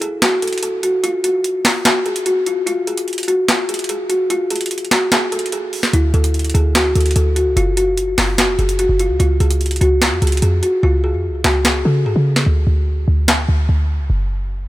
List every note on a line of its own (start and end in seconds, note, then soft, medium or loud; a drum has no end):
0.01 0.20 G#4 medium
0.01 closed hi-hat medium
0.22 0.40 F#4 loud
0.22 snare loud
0.22 clap medium
0.22 closed hi-hat medium
0.42 0.61 A4 medium
0.42 closed hi-hat medium
0.47 closed hi-hat medium
0.53 closed hi-hat medium
0.58 closed hi-hat medium
0.63 0.81 A4 medium
0.63 closed hi-hat medium
0.83 1.01 F#4 medium
0.83 closed hi-hat medium
1.03 1.22 F4 loud
1.03 closed hi-hat medium
1.24 1.62 F#4 medium
1.24 closed hi-hat medium
1.44 closed hi-hat medium
1.65 1.83 F4 medium
1.65 snare loud
1.65 clap medium
1.65 open hi-hat soft
1.85 2.03 F#4 medium
1.85 snare loud
1.85 clap medium
1.85 closed hi-hat medium
2.06 2.24 G#4 medium
2.06 closed hi-hat soft
2.16 closed hi-hat medium
2.26 2.44 F#4 medium
2.26 closed hi-hat medium
2.46 2.65 F4 medium
2.46 closed hi-hat medium
2.66 2.85 F4 loud
2.66 closed hi-hat medium
2.87 3.26 G#4 medium
2.87 closed hi-hat medium
2.97 closed hi-hat medium
3.08 closed hi-hat soft
3.13 closed hi-hat medium
3.18 closed hi-hat medium
3.23 closed hi-hat medium
3.28 3.46 F#4 medium
3.28 closed hi-hat medium
3.48 3.67 F4 medium
3.48 snare loud
3.48 clap medium
3.48 closed hi-hat medium
3.69 3.87 G#4 medium
3.69 closed hi-hat medium
3.74 closed hi-hat medium
3.79 closed hi-hat medium
3.84 closed hi-hat medium
3.89 4.08 G#4 medium
3.89 closed hi-hat medium
4.09 4.28 F#4 medium
4.09 closed hi-hat medium
4.30 4.48 F4 loud
4.30 closed hi-hat medium
4.50 4.89 G#4 medium
4.50 closed hi-hat medium
4.56 closed hi-hat medium
4.61 closed hi-hat medium
4.66 closed hi-hat medium
4.71 closed hi-hat medium
4.78 closed hi-hat medium
4.85 closed hi-hat soft
4.91 5.10 F#4 medium
4.91 snare loud
4.91 clap medium
4.91 closed hi-hat medium
5.12 5.30 G#4 medium
5.12 snare loud
5.12 clap medium
5.12 closed hi-hat medium
5.32 5.50 A4 medium
5.32 closed hi-hat medium
5.39 closed hi-hat medium
5.46 closed hi-hat medium
5.52 5.91 G#4 medium
5.52 closed hi-hat medium
5.73 open hi-hat medium
5.83 snare medium
5.93 6.13 D2 loud
5.93 6.12 E4 loud
5.93 closed hi-hat medium
6.14 6.53 D2 loud
6.14 6.52 A4 medium
6.14 closed hi-hat medium
6.24 closed hi-hat medium
6.34 closed hi-hat soft
6.39 closed hi-hat medium
6.44 closed hi-hat medium
6.50 closed hi-hat medium
6.54 6.94 D2 loud
6.54 6.73 G#4 medium
6.54 closed hi-hat medium
6.75 6.93 F#4 loud
6.75 snare loud
6.75 clap medium
6.75 closed hi-hat medium
6.95 7.15 D2 loud
6.95 7.14 A4 medium
6.95 closed hi-hat medium
7.01 closed hi-hat medium
7.06 closed hi-hat medium
7.11 closed hi-hat medium
7.16 7.48 D2 loud
7.16 7.34 A4 medium
7.16 closed hi-hat medium
7.36 7.54 F#4 medium
7.36 closed hi-hat medium
7.46 7.56 C#2 loud
7.57 8.15 F#1 loud
7.57 7.75 F4 loud
7.57 closed hi-hat medium
7.77 8.15 F#4 medium
7.77 closed hi-hat medium
7.97 closed hi-hat medium
8.18 8.50 F#1 loud
8.18 8.36 F4 medium
8.18 snare loud
8.18 clap medium
8.18 open hi-hat soft
8.38 8.56 F#4 medium
8.38 snare loud
8.38 clap medium
8.38 closed hi-hat medium
8.48 8.58 F1 medium
8.59 8.88 F#1 loud
8.59 8.77 G#4 medium
8.59 closed hi-hat soft
8.69 closed hi-hat medium
8.79 8.97 F#4 medium
8.79 closed hi-hat medium
8.89 9.11 F#1 loud
8.99 9.18 F4 medium
8.99 closed hi-hat medium
9.10 9.19 C#2 loud
9.20 9.39 C#2 loud
9.20 9.38 F4 loud
9.20 closed hi-hat medium
9.40 9.79 C#2 loud
9.40 9.79 G#4 medium
9.40 closed hi-hat medium
9.51 closed hi-hat medium
9.61 closed hi-hat soft
9.66 closed hi-hat medium
9.71 closed hi-hat medium
9.76 closed hi-hat medium
9.81 10.13 C#2 loud
9.81 9.99 F#4 medium
9.81 closed hi-hat medium
10.02 10.20 F4 medium
10.02 snare loud
10.02 clap medium
10.02 closed hi-hat medium
10.12 10.21 F2 loud
10.22 10.42 C#2 loud
10.22 10.40 G#4 medium
10.22 closed hi-hat medium
10.27 closed hi-hat medium
10.32 closed hi-hat medium
10.37 closed hi-hat medium
10.42 10.62 F2 loud
10.42 10.61 G#4 medium
10.42 closed hi-hat medium
10.63 10.81 F#4 medium
10.63 closed hi-hat medium
10.83 11.15 C#2 loud
10.83 11.01 F4 loud
11.04 11.42 G#4 medium
11.14 11.31 F2 medium
11.29 11.44 C#2 loud
11.44 11.84 C#2 loud
11.44 11.63 F#4 medium
11.44 snare loud
11.44 clap medium
11.65 11.83 G#4 medium
11.65 snare loud
11.65 clap medium
11.85 12.07 C#3 loud
11.85 12.03 A4 medium
12.06 12.15 G#2 loud
12.06 12.44 G#4 medium
12.16 12.45 C#3 loud
12.36 snare medium
12.46 12.66 D2 loud
12.67 13.06 D2 loud
13.08 13.47 D2 loud
13.28 snare loud
13.28 clap medium
13.49 13.68 D2 loud
13.69 14.01 D2 loud
14.00 14.09 C#2 loud
14.10 14.68 F#1 loud